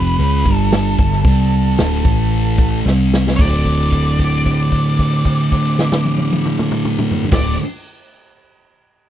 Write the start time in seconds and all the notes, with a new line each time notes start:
Already playing: F1 F2 C3 F3 B4
0.19 C#2 C#3 G#3 C#4, open hi-hat
0.45 G1 G2 D3 G3, kick
0.55 A4
0.71 snare, open hi-hat
0.99 G1 G2 D3, kick
1.13 snare
1.24 C2 C3 G3 C4, kick, open hi-hat
1.78 D1 D2 A2 D3, snare, open hi-hat
2.05 A1 A2 E3 A3, kick
2.31 open hi-hat
2.58 kick
2.86 C2 C3 G3 C4, snare
3.14 snare
3.27 snare
3.36 D1 D2 A2 D5, kick, crash
3.42 D3
3.66 kick, crash
3.80 crash
3.92 kick, crash
4.07 crash
4.19 kick, crash
4.32 crash
4.46 kick, crash
4.59 crash
4.72 kick, crash
4.86 crash
4.99 kick, crash
5.12 crash
5.25 kick, crash
5.39 crash
5.52 kick, crash
5.65 crash
5.79 snare
5.92 snare
6.05 high tom
6.18 high tom
6.32 high tom
6.45 mid tom
6.59 mid tom
6.71 mid tom
6.85 mid tom
6.99 mid tom
7.11 floor tom
7.24 floor tom
7.31 D1 D2 A2 D5, kick, snare, crash
7.36 D3